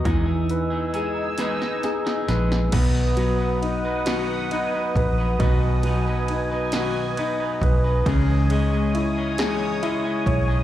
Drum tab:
CC |------------|x-----------|------------|------------|
RD |------------|x-x-x-x-x-x-|x-x-x-x-x-x-|x-x-x-x-x-x-|
HH |x-x-x-x-x-x-|------------|------------|------------|
SD |------oooooo|------o-----|------o-----|------o-----|
BD |o-----------|o---------o-|o---------o-|o---------o-|